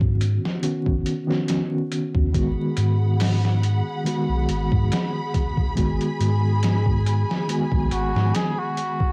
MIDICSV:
0, 0, Header, 1, 6, 480
1, 0, Start_track
1, 0, Key_signature, 5, "minor"
1, 0, Tempo, 857143
1, 1316, Time_signature, 4, 2, 24, 8
1, 5109, End_track
2, 0, Start_track
2, 0, Title_t, "String section"
2, 0, Program_c, 0, 48
2, 1308, Note_on_c, 0, 68, 68
2, 1310, Note_on_c, 0, 78, 67
2, 1310, Note_on_c, 0, 83, 86
2, 3214, Note_off_c, 0, 78, 0
2, 3234, Note_on_c, 0, 80, 73
2, 5109, Note_off_c, 0, 68, 0
2, 5109, Note_off_c, 0, 80, 0
2, 5109, Note_off_c, 0, 83, 0
2, 5109, End_track
3, 0, Start_track
3, 0, Title_t, "Muted trumpet"
3, 0, Program_c, 1, 59
3, 4439, Note_on_c, 1, 66, 99
3, 4674, Note_on_c, 1, 68, 101
3, 4683, Note_off_c, 1, 66, 0
3, 4809, Note_on_c, 1, 66, 104
3, 4818, Note_off_c, 1, 68, 0
3, 5109, Note_off_c, 1, 66, 0
3, 5109, End_track
4, 0, Start_track
4, 0, Title_t, "Reed electric piano"
4, 0, Program_c, 2, 4
4, 0, Control_c, 2, 64, 127
4, 0, Note_on_c, 2, 51, 82
4, 0, Note_on_c, 2, 59, 73
4, 0, Note_on_c, 2, 61, 73
4, 0, Note_on_c, 2, 66, 95
4, 322, Note_off_c, 2, 51, 0
4, 328, Note_off_c, 2, 59, 0
4, 329, Note_off_c, 2, 61, 0
4, 333, Note_off_c, 2, 66, 0
4, 350, Note_on_c, 2, 51, 77
4, 350, Note_on_c, 2, 59, 73
4, 353, Note_on_c, 2, 61, 69
4, 357, Note_on_c, 2, 66, 87
4, 697, Note_off_c, 2, 51, 0
4, 697, Note_off_c, 2, 59, 0
4, 699, Note_off_c, 2, 61, 0
4, 701, Note_off_c, 2, 66, 0
4, 711, Note_on_c, 2, 51, 86
4, 717, Note_on_c, 2, 59, 82
4, 725, Note_on_c, 2, 61, 81
4, 729, Note_on_c, 2, 66, 98
4, 1282, Note_off_c, 2, 51, 0
4, 1285, Note_off_c, 2, 59, 0
4, 1289, Note_off_c, 2, 61, 0
4, 1291, Note_off_c, 2, 66, 0
4, 1302, Note_on_c, 2, 51, 82
4, 1308, Note_on_c, 2, 56, 75
4, 1315, Note_on_c, 2, 59, 74
4, 1319, Note_on_c, 2, 66, 94
4, 1323, Control_c, 2, 64, 0
4, 1419, Control_c, 2, 64, 127
4, 2243, Note_off_c, 2, 51, 0
4, 2246, Note_off_c, 2, 56, 0
4, 2249, Note_off_c, 2, 59, 0
4, 2251, Note_off_c, 2, 66, 0
4, 2263, Note_on_c, 2, 51, 80
4, 2269, Note_on_c, 2, 56, 72
4, 2275, Note_on_c, 2, 59, 73
4, 2283, Note_on_c, 2, 66, 93
4, 3203, Note_off_c, 2, 51, 0
4, 3206, Note_off_c, 2, 56, 0
4, 3209, Note_off_c, 2, 59, 0
4, 3213, Note_off_c, 2, 66, 0
4, 3220, Note_on_c, 2, 51, 80
4, 3226, Note_on_c, 2, 56, 74
4, 3231, Note_on_c, 2, 59, 76
4, 3239, Note_on_c, 2, 66, 90
4, 4162, Note_off_c, 2, 51, 0
4, 4165, Note_off_c, 2, 56, 0
4, 4167, Note_off_c, 2, 59, 0
4, 4171, Note_off_c, 2, 66, 0
4, 4184, Note_on_c, 2, 51, 78
4, 4191, Note_on_c, 2, 56, 75
4, 4197, Note_on_c, 2, 59, 79
4, 4202, Note_on_c, 2, 66, 83
4, 5109, Note_off_c, 2, 51, 0
4, 5109, Note_off_c, 2, 56, 0
4, 5109, Note_off_c, 2, 59, 0
4, 5109, Note_off_c, 2, 66, 0
4, 5109, End_track
5, 0, Start_track
5, 0, Title_t, "Sub bass"
5, 0, Program_c, 3, 38
5, 0, Note_on_c, 3, 44, 95
5, 219, Note_off_c, 3, 44, 0
5, 484, Note_on_c, 3, 32, 84
5, 582, Note_off_c, 3, 32, 0
5, 1201, Note_on_c, 3, 39, 82
5, 1300, Note_off_c, 3, 39, 0
5, 1314, Note_on_c, 3, 32, 98
5, 1429, Note_off_c, 3, 32, 0
5, 1552, Note_on_c, 3, 44, 100
5, 2139, Note_off_c, 3, 44, 0
5, 2401, Note_on_c, 3, 35, 85
5, 2500, Note_off_c, 3, 35, 0
5, 2514, Note_on_c, 3, 32, 90
5, 2629, Note_off_c, 3, 32, 0
5, 2644, Note_on_c, 3, 44, 93
5, 2742, Note_off_c, 3, 44, 0
5, 3233, Note_on_c, 3, 32, 95
5, 3349, Note_off_c, 3, 32, 0
5, 3471, Note_on_c, 3, 44, 95
5, 4059, Note_off_c, 3, 44, 0
5, 4323, Note_on_c, 3, 35, 92
5, 4421, Note_off_c, 3, 35, 0
5, 4433, Note_on_c, 3, 32, 93
5, 4549, Note_off_c, 3, 32, 0
5, 4565, Note_on_c, 3, 44, 97
5, 4662, Note_off_c, 3, 44, 0
5, 5109, End_track
6, 0, Start_track
6, 0, Title_t, "Drums"
6, 5, Note_on_c, 9, 36, 86
6, 61, Note_off_c, 9, 36, 0
6, 117, Note_on_c, 9, 42, 60
6, 173, Note_off_c, 9, 42, 0
6, 254, Note_on_c, 9, 38, 50
6, 310, Note_off_c, 9, 38, 0
6, 352, Note_on_c, 9, 42, 78
6, 408, Note_off_c, 9, 42, 0
6, 483, Note_on_c, 9, 36, 87
6, 539, Note_off_c, 9, 36, 0
6, 593, Note_on_c, 9, 42, 55
6, 649, Note_off_c, 9, 42, 0
6, 732, Note_on_c, 9, 38, 37
6, 788, Note_off_c, 9, 38, 0
6, 830, Note_on_c, 9, 42, 80
6, 839, Note_on_c, 9, 38, 107
6, 886, Note_off_c, 9, 42, 0
6, 895, Note_off_c, 9, 38, 0
6, 1073, Note_on_c, 9, 42, 63
6, 1129, Note_off_c, 9, 42, 0
6, 1202, Note_on_c, 9, 36, 88
6, 1258, Note_off_c, 9, 36, 0
6, 1312, Note_on_c, 9, 36, 95
6, 1313, Note_on_c, 9, 42, 75
6, 1368, Note_off_c, 9, 36, 0
6, 1369, Note_off_c, 9, 42, 0
6, 1549, Note_on_c, 9, 42, 70
6, 1605, Note_off_c, 9, 42, 0
6, 1792, Note_on_c, 9, 46, 78
6, 1800, Note_on_c, 9, 38, 113
6, 1848, Note_off_c, 9, 46, 0
6, 1856, Note_off_c, 9, 38, 0
6, 1932, Note_on_c, 9, 38, 39
6, 1988, Note_off_c, 9, 38, 0
6, 2035, Note_on_c, 9, 42, 59
6, 2091, Note_off_c, 9, 42, 0
6, 2276, Note_on_c, 9, 42, 76
6, 2332, Note_off_c, 9, 42, 0
6, 2514, Note_on_c, 9, 42, 59
6, 2570, Note_off_c, 9, 42, 0
6, 2643, Note_on_c, 9, 36, 89
6, 2699, Note_off_c, 9, 36, 0
6, 2754, Note_on_c, 9, 42, 78
6, 2763, Note_on_c, 9, 38, 109
6, 2810, Note_off_c, 9, 42, 0
6, 2819, Note_off_c, 9, 38, 0
6, 2993, Note_on_c, 9, 36, 90
6, 2993, Note_on_c, 9, 42, 59
6, 3049, Note_off_c, 9, 36, 0
6, 3049, Note_off_c, 9, 42, 0
6, 3121, Note_on_c, 9, 36, 81
6, 3177, Note_off_c, 9, 36, 0
6, 3231, Note_on_c, 9, 42, 79
6, 3232, Note_on_c, 9, 36, 92
6, 3287, Note_off_c, 9, 42, 0
6, 3288, Note_off_c, 9, 36, 0
6, 3365, Note_on_c, 9, 42, 41
6, 3421, Note_off_c, 9, 42, 0
6, 3475, Note_on_c, 9, 42, 66
6, 3531, Note_off_c, 9, 42, 0
6, 3712, Note_on_c, 9, 42, 85
6, 3720, Note_on_c, 9, 38, 110
6, 3768, Note_off_c, 9, 42, 0
6, 3776, Note_off_c, 9, 38, 0
6, 3842, Note_on_c, 9, 36, 77
6, 3898, Note_off_c, 9, 36, 0
6, 3956, Note_on_c, 9, 42, 59
6, 4012, Note_off_c, 9, 42, 0
6, 4094, Note_on_c, 9, 38, 54
6, 4150, Note_off_c, 9, 38, 0
6, 4195, Note_on_c, 9, 42, 79
6, 4251, Note_off_c, 9, 42, 0
6, 4321, Note_on_c, 9, 36, 87
6, 4377, Note_off_c, 9, 36, 0
6, 4431, Note_on_c, 9, 42, 58
6, 4487, Note_off_c, 9, 42, 0
6, 4571, Note_on_c, 9, 38, 40
6, 4627, Note_off_c, 9, 38, 0
6, 4673, Note_on_c, 9, 42, 84
6, 4682, Note_on_c, 9, 38, 99
6, 4729, Note_off_c, 9, 42, 0
6, 4738, Note_off_c, 9, 38, 0
6, 4913, Note_on_c, 9, 42, 62
6, 4969, Note_off_c, 9, 42, 0
6, 5042, Note_on_c, 9, 36, 82
6, 5098, Note_off_c, 9, 36, 0
6, 5109, End_track
0, 0, End_of_file